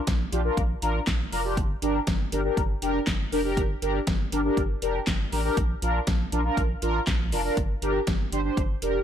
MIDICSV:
0, 0, Header, 1, 4, 480
1, 0, Start_track
1, 0, Key_signature, -2, "minor"
1, 0, Tempo, 500000
1, 1509, Time_signature, 4, 2, 24, 8
1, 8674, End_track
2, 0, Start_track
2, 0, Title_t, "Analog polysynth"
2, 0, Program_c, 0, 90
2, 309, Note_on_c, 0, 65, 82
2, 309, Note_on_c, 0, 67, 99
2, 310, Note_on_c, 0, 62, 90
2, 391, Note_off_c, 0, 62, 0
2, 391, Note_off_c, 0, 65, 0
2, 391, Note_off_c, 0, 67, 0
2, 429, Note_on_c, 0, 62, 84
2, 429, Note_on_c, 0, 65, 74
2, 429, Note_on_c, 0, 70, 92
2, 593, Note_off_c, 0, 62, 0
2, 593, Note_off_c, 0, 65, 0
2, 593, Note_off_c, 0, 70, 0
2, 790, Note_on_c, 0, 62, 89
2, 790, Note_on_c, 0, 65, 80
2, 790, Note_on_c, 0, 70, 96
2, 954, Note_off_c, 0, 62, 0
2, 954, Note_off_c, 0, 65, 0
2, 954, Note_off_c, 0, 70, 0
2, 1269, Note_on_c, 0, 62, 92
2, 1269, Note_on_c, 0, 65, 82
2, 1269, Note_on_c, 0, 70, 101
2, 1351, Note_off_c, 0, 62, 0
2, 1351, Note_off_c, 0, 65, 0
2, 1351, Note_off_c, 0, 70, 0
2, 1390, Note_on_c, 0, 62, 82
2, 1390, Note_on_c, 0, 65, 74
2, 1390, Note_on_c, 0, 67, 92
2, 1509, Note_off_c, 0, 62, 0
2, 1509, Note_off_c, 0, 67, 0
2, 1510, Note_off_c, 0, 65, 0
2, 1749, Note_on_c, 0, 62, 91
2, 1749, Note_on_c, 0, 70, 95
2, 1750, Note_on_c, 0, 67, 81
2, 1913, Note_off_c, 0, 62, 0
2, 1913, Note_off_c, 0, 70, 0
2, 1914, Note_off_c, 0, 67, 0
2, 2230, Note_on_c, 0, 62, 93
2, 2230, Note_on_c, 0, 67, 84
2, 2230, Note_on_c, 0, 70, 100
2, 2312, Note_off_c, 0, 62, 0
2, 2312, Note_off_c, 0, 67, 0
2, 2312, Note_off_c, 0, 70, 0
2, 2349, Note_on_c, 0, 62, 80
2, 2349, Note_on_c, 0, 67, 75
2, 2349, Note_on_c, 0, 70, 87
2, 2513, Note_off_c, 0, 62, 0
2, 2513, Note_off_c, 0, 67, 0
2, 2513, Note_off_c, 0, 70, 0
2, 2708, Note_on_c, 0, 62, 90
2, 2708, Note_on_c, 0, 67, 79
2, 2708, Note_on_c, 0, 70, 98
2, 2873, Note_off_c, 0, 62, 0
2, 2873, Note_off_c, 0, 67, 0
2, 2873, Note_off_c, 0, 70, 0
2, 3189, Note_on_c, 0, 62, 93
2, 3189, Note_on_c, 0, 70, 100
2, 3190, Note_on_c, 0, 67, 84
2, 3271, Note_off_c, 0, 62, 0
2, 3271, Note_off_c, 0, 67, 0
2, 3271, Note_off_c, 0, 70, 0
2, 3309, Note_on_c, 0, 70, 91
2, 3310, Note_on_c, 0, 62, 80
2, 3310, Note_on_c, 0, 67, 76
2, 3473, Note_off_c, 0, 70, 0
2, 3474, Note_off_c, 0, 62, 0
2, 3474, Note_off_c, 0, 67, 0
2, 3668, Note_on_c, 0, 67, 82
2, 3669, Note_on_c, 0, 62, 88
2, 3669, Note_on_c, 0, 70, 97
2, 3833, Note_off_c, 0, 62, 0
2, 3833, Note_off_c, 0, 67, 0
2, 3833, Note_off_c, 0, 70, 0
2, 4149, Note_on_c, 0, 62, 91
2, 4150, Note_on_c, 0, 67, 84
2, 4150, Note_on_c, 0, 70, 96
2, 4231, Note_off_c, 0, 62, 0
2, 4231, Note_off_c, 0, 67, 0
2, 4231, Note_off_c, 0, 70, 0
2, 4270, Note_on_c, 0, 67, 74
2, 4270, Note_on_c, 0, 70, 92
2, 4271, Note_on_c, 0, 62, 84
2, 4434, Note_off_c, 0, 62, 0
2, 4434, Note_off_c, 0, 67, 0
2, 4434, Note_off_c, 0, 70, 0
2, 4629, Note_on_c, 0, 62, 89
2, 4629, Note_on_c, 0, 67, 79
2, 4629, Note_on_c, 0, 70, 100
2, 4793, Note_off_c, 0, 62, 0
2, 4793, Note_off_c, 0, 67, 0
2, 4793, Note_off_c, 0, 70, 0
2, 5110, Note_on_c, 0, 62, 90
2, 5110, Note_on_c, 0, 67, 81
2, 5110, Note_on_c, 0, 70, 100
2, 5191, Note_off_c, 0, 67, 0
2, 5192, Note_off_c, 0, 62, 0
2, 5192, Note_off_c, 0, 70, 0
2, 5228, Note_on_c, 0, 62, 81
2, 5229, Note_on_c, 0, 67, 76
2, 5229, Note_on_c, 0, 70, 93
2, 5349, Note_off_c, 0, 62, 0
2, 5349, Note_off_c, 0, 67, 0
2, 5349, Note_off_c, 0, 70, 0
2, 5589, Note_on_c, 0, 62, 91
2, 5590, Note_on_c, 0, 65, 84
2, 5590, Note_on_c, 0, 70, 96
2, 5753, Note_off_c, 0, 62, 0
2, 5754, Note_off_c, 0, 65, 0
2, 5754, Note_off_c, 0, 70, 0
2, 6069, Note_on_c, 0, 62, 92
2, 6069, Note_on_c, 0, 65, 83
2, 6069, Note_on_c, 0, 70, 96
2, 6151, Note_off_c, 0, 62, 0
2, 6151, Note_off_c, 0, 65, 0
2, 6151, Note_off_c, 0, 70, 0
2, 6190, Note_on_c, 0, 62, 79
2, 6190, Note_on_c, 0, 65, 75
2, 6190, Note_on_c, 0, 70, 92
2, 6354, Note_off_c, 0, 62, 0
2, 6354, Note_off_c, 0, 65, 0
2, 6354, Note_off_c, 0, 70, 0
2, 6549, Note_on_c, 0, 70, 101
2, 6550, Note_on_c, 0, 62, 92
2, 6550, Note_on_c, 0, 65, 81
2, 6713, Note_off_c, 0, 70, 0
2, 6714, Note_off_c, 0, 62, 0
2, 6714, Note_off_c, 0, 65, 0
2, 7030, Note_on_c, 0, 62, 91
2, 7030, Note_on_c, 0, 65, 85
2, 7030, Note_on_c, 0, 70, 96
2, 7112, Note_off_c, 0, 62, 0
2, 7112, Note_off_c, 0, 65, 0
2, 7112, Note_off_c, 0, 70, 0
2, 7149, Note_on_c, 0, 62, 84
2, 7149, Note_on_c, 0, 65, 76
2, 7149, Note_on_c, 0, 70, 94
2, 7269, Note_off_c, 0, 62, 0
2, 7269, Note_off_c, 0, 65, 0
2, 7269, Note_off_c, 0, 70, 0
2, 7511, Note_on_c, 0, 62, 88
2, 7511, Note_on_c, 0, 67, 81
2, 7511, Note_on_c, 0, 70, 103
2, 7674, Note_off_c, 0, 62, 0
2, 7674, Note_off_c, 0, 67, 0
2, 7674, Note_off_c, 0, 70, 0
2, 7990, Note_on_c, 0, 62, 94
2, 7990, Note_on_c, 0, 67, 84
2, 7990, Note_on_c, 0, 72, 101
2, 8071, Note_off_c, 0, 62, 0
2, 8071, Note_off_c, 0, 72, 0
2, 8072, Note_off_c, 0, 67, 0
2, 8110, Note_on_c, 0, 62, 80
2, 8110, Note_on_c, 0, 67, 71
2, 8110, Note_on_c, 0, 72, 90
2, 8274, Note_off_c, 0, 62, 0
2, 8274, Note_off_c, 0, 67, 0
2, 8274, Note_off_c, 0, 72, 0
2, 8469, Note_on_c, 0, 70, 99
2, 8470, Note_on_c, 0, 62, 89
2, 8470, Note_on_c, 0, 67, 82
2, 8634, Note_off_c, 0, 62, 0
2, 8634, Note_off_c, 0, 67, 0
2, 8634, Note_off_c, 0, 70, 0
2, 8674, End_track
3, 0, Start_track
3, 0, Title_t, "Analog synth bass"
3, 0, Program_c, 1, 38
3, 72, Note_on_c, 1, 34, 99
3, 239, Note_off_c, 1, 34, 0
3, 311, Note_on_c, 1, 34, 103
3, 478, Note_off_c, 1, 34, 0
3, 550, Note_on_c, 1, 34, 109
3, 718, Note_off_c, 1, 34, 0
3, 790, Note_on_c, 1, 33, 93
3, 958, Note_off_c, 1, 33, 0
3, 1030, Note_on_c, 1, 34, 98
3, 1198, Note_off_c, 1, 34, 0
3, 1269, Note_on_c, 1, 29, 81
3, 1510, Note_on_c, 1, 31, 102
3, 1524, Note_off_c, 1, 29, 0
3, 1678, Note_off_c, 1, 31, 0
3, 1749, Note_on_c, 1, 31, 97
3, 1917, Note_off_c, 1, 31, 0
3, 1991, Note_on_c, 1, 31, 105
3, 2158, Note_off_c, 1, 31, 0
3, 2229, Note_on_c, 1, 31, 104
3, 2397, Note_off_c, 1, 31, 0
3, 2469, Note_on_c, 1, 31, 107
3, 2637, Note_off_c, 1, 31, 0
3, 2709, Note_on_c, 1, 29, 90
3, 2877, Note_off_c, 1, 29, 0
3, 2949, Note_on_c, 1, 31, 107
3, 3117, Note_off_c, 1, 31, 0
3, 3189, Note_on_c, 1, 29, 92
3, 3429, Note_on_c, 1, 31, 109
3, 3443, Note_off_c, 1, 29, 0
3, 3597, Note_off_c, 1, 31, 0
3, 3669, Note_on_c, 1, 31, 102
3, 3837, Note_off_c, 1, 31, 0
3, 3911, Note_on_c, 1, 31, 106
3, 4079, Note_off_c, 1, 31, 0
3, 4149, Note_on_c, 1, 31, 94
3, 4317, Note_off_c, 1, 31, 0
3, 4389, Note_on_c, 1, 31, 104
3, 4557, Note_off_c, 1, 31, 0
3, 4629, Note_on_c, 1, 29, 96
3, 4797, Note_off_c, 1, 29, 0
3, 4869, Note_on_c, 1, 31, 103
3, 5037, Note_off_c, 1, 31, 0
3, 5110, Note_on_c, 1, 33, 92
3, 5278, Note_off_c, 1, 33, 0
3, 5349, Note_on_c, 1, 34, 108
3, 5517, Note_off_c, 1, 34, 0
3, 5589, Note_on_c, 1, 34, 112
3, 5757, Note_off_c, 1, 34, 0
3, 5832, Note_on_c, 1, 34, 98
3, 5999, Note_off_c, 1, 34, 0
3, 6070, Note_on_c, 1, 34, 95
3, 6238, Note_off_c, 1, 34, 0
3, 6309, Note_on_c, 1, 34, 111
3, 6477, Note_off_c, 1, 34, 0
3, 6549, Note_on_c, 1, 33, 102
3, 6717, Note_off_c, 1, 33, 0
3, 6790, Note_on_c, 1, 34, 109
3, 7029, Note_on_c, 1, 29, 89
3, 7043, Note_off_c, 1, 34, 0
3, 7197, Note_off_c, 1, 29, 0
3, 7269, Note_on_c, 1, 31, 111
3, 7437, Note_off_c, 1, 31, 0
3, 7508, Note_on_c, 1, 31, 113
3, 7676, Note_off_c, 1, 31, 0
3, 7751, Note_on_c, 1, 31, 112
3, 7918, Note_off_c, 1, 31, 0
3, 7988, Note_on_c, 1, 31, 113
3, 8156, Note_off_c, 1, 31, 0
3, 8230, Note_on_c, 1, 31, 104
3, 8398, Note_off_c, 1, 31, 0
3, 8469, Note_on_c, 1, 29, 98
3, 8637, Note_off_c, 1, 29, 0
3, 8674, End_track
4, 0, Start_track
4, 0, Title_t, "Drums"
4, 69, Note_on_c, 9, 42, 89
4, 71, Note_on_c, 9, 38, 127
4, 72, Note_on_c, 9, 36, 124
4, 165, Note_off_c, 9, 42, 0
4, 167, Note_off_c, 9, 38, 0
4, 168, Note_off_c, 9, 36, 0
4, 312, Note_on_c, 9, 42, 81
4, 408, Note_off_c, 9, 42, 0
4, 550, Note_on_c, 9, 36, 118
4, 552, Note_on_c, 9, 42, 73
4, 646, Note_off_c, 9, 36, 0
4, 648, Note_off_c, 9, 42, 0
4, 789, Note_on_c, 9, 42, 79
4, 885, Note_off_c, 9, 42, 0
4, 1030, Note_on_c, 9, 36, 125
4, 1030, Note_on_c, 9, 38, 115
4, 1030, Note_on_c, 9, 39, 95
4, 1031, Note_on_c, 9, 42, 82
4, 1126, Note_off_c, 9, 36, 0
4, 1126, Note_off_c, 9, 38, 0
4, 1126, Note_off_c, 9, 39, 0
4, 1127, Note_off_c, 9, 42, 0
4, 1272, Note_on_c, 9, 46, 70
4, 1368, Note_off_c, 9, 46, 0
4, 1509, Note_on_c, 9, 36, 122
4, 1510, Note_on_c, 9, 42, 84
4, 1605, Note_off_c, 9, 36, 0
4, 1606, Note_off_c, 9, 42, 0
4, 1750, Note_on_c, 9, 42, 72
4, 1846, Note_off_c, 9, 42, 0
4, 1988, Note_on_c, 9, 42, 83
4, 1990, Note_on_c, 9, 38, 122
4, 1991, Note_on_c, 9, 36, 123
4, 2084, Note_off_c, 9, 42, 0
4, 2086, Note_off_c, 9, 38, 0
4, 2087, Note_off_c, 9, 36, 0
4, 2230, Note_on_c, 9, 42, 77
4, 2326, Note_off_c, 9, 42, 0
4, 2469, Note_on_c, 9, 36, 127
4, 2471, Note_on_c, 9, 42, 74
4, 2565, Note_off_c, 9, 36, 0
4, 2567, Note_off_c, 9, 42, 0
4, 2709, Note_on_c, 9, 42, 82
4, 2805, Note_off_c, 9, 42, 0
4, 2949, Note_on_c, 9, 36, 127
4, 2949, Note_on_c, 9, 38, 115
4, 2949, Note_on_c, 9, 39, 94
4, 2950, Note_on_c, 9, 42, 83
4, 3045, Note_off_c, 9, 36, 0
4, 3045, Note_off_c, 9, 38, 0
4, 3045, Note_off_c, 9, 39, 0
4, 3046, Note_off_c, 9, 42, 0
4, 3192, Note_on_c, 9, 46, 70
4, 3288, Note_off_c, 9, 46, 0
4, 3429, Note_on_c, 9, 36, 121
4, 3429, Note_on_c, 9, 42, 85
4, 3525, Note_off_c, 9, 36, 0
4, 3525, Note_off_c, 9, 42, 0
4, 3670, Note_on_c, 9, 42, 71
4, 3766, Note_off_c, 9, 42, 0
4, 3908, Note_on_c, 9, 42, 89
4, 3910, Note_on_c, 9, 38, 122
4, 3911, Note_on_c, 9, 36, 127
4, 4004, Note_off_c, 9, 42, 0
4, 4006, Note_off_c, 9, 38, 0
4, 4007, Note_off_c, 9, 36, 0
4, 4151, Note_on_c, 9, 42, 82
4, 4247, Note_off_c, 9, 42, 0
4, 4389, Note_on_c, 9, 36, 122
4, 4391, Note_on_c, 9, 42, 73
4, 4485, Note_off_c, 9, 36, 0
4, 4487, Note_off_c, 9, 42, 0
4, 4628, Note_on_c, 9, 42, 80
4, 4724, Note_off_c, 9, 42, 0
4, 4869, Note_on_c, 9, 38, 119
4, 4869, Note_on_c, 9, 39, 95
4, 4870, Note_on_c, 9, 36, 124
4, 4870, Note_on_c, 9, 42, 85
4, 4965, Note_off_c, 9, 38, 0
4, 4965, Note_off_c, 9, 39, 0
4, 4966, Note_off_c, 9, 36, 0
4, 4966, Note_off_c, 9, 42, 0
4, 5112, Note_on_c, 9, 46, 70
4, 5208, Note_off_c, 9, 46, 0
4, 5349, Note_on_c, 9, 36, 121
4, 5349, Note_on_c, 9, 42, 85
4, 5445, Note_off_c, 9, 36, 0
4, 5445, Note_off_c, 9, 42, 0
4, 5590, Note_on_c, 9, 42, 76
4, 5686, Note_off_c, 9, 42, 0
4, 5828, Note_on_c, 9, 42, 85
4, 5830, Note_on_c, 9, 38, 126
4, 5831, Note_on_c, 9, 36, 123
4, 5924, Note_off_c, 9, 42, 0
4, 5926, Note_off_c, 9, 38, 0
4, 5927, Note_off_c, 9, 36, 0
4, 6071, Note_on_c, 9, 42, 79
4, 6167, Note_off_c, 9, 42, 0
4, 6309, Note_on_c, 9, 36, 127
4, 6312, Note_on_c, 9, 42, 74
4, 6405, Note_off_c, 9, 36, 0
4, 6408, Note_off_c, 9, 42, 0
4, 6549, Note_on_c, 9, 42, 78
4, 6645, Note_off_c, 9, 42, 0
4, 6789, Note_on_c, 9, 38, 115
4, 6789, Note_on_c, 9, 39, 94
4, 6789, Note_on_c, 9, 42, 84
4, 6790, Note_on_c, 9, 36, 125
4, 6885, Note_off_c, 9, 38, 0
4, 6885, Note_off_c, 9, 39, 0
4, 6885, Note_off_c, 9, 42, 0
4, 6886, Note_off_c, 9, 36, 0
4, 7031, Note_on_c, 9, 46, 72
4, 7127, Note_off_c, 9, 46, 0
4, 7269, Note_on_c, 9, 36, 118
4, 7269, Note_on_c, 9, 42, 83
4, 7365, Note_off_c, 9, 36, 0
4, 7365, Note_off_c, 9, 42, 0
4, 7509, Note_on_c, 9, 42, 75
4, 7605, Note_off_c, 9, 42, 0
4, 7748, Note_on_c, 9, 42, 88
4, 7750, Note_on_c, 9, 38, 125
4, 7751, Note_on_c, 9, 36, 123
4, 7844, Note_off_c, 9, 42, 0
4, 7846, Note_off_c, 9, 38, 0
4, 7847, Note_off_c, 9, 36, 0
4, 7992, Note_on_c, 9, 42, 80
4, 8088, Note_off_c, 9, 42, 0
4, 8230, Note_on_c, 9, 36, 122
4, 8232, Note_on_c, 9, 42, 73
4, 8326, Note_off_c, 9, 36, 0
4, 8328, Note_off_c, 9, 42, 0
4, 8468, Note_on_c, 9, 42, 77
4, 8564, Note_off_c, 9, 42, 0
4, 8674, End_track
0, 0, End_of_file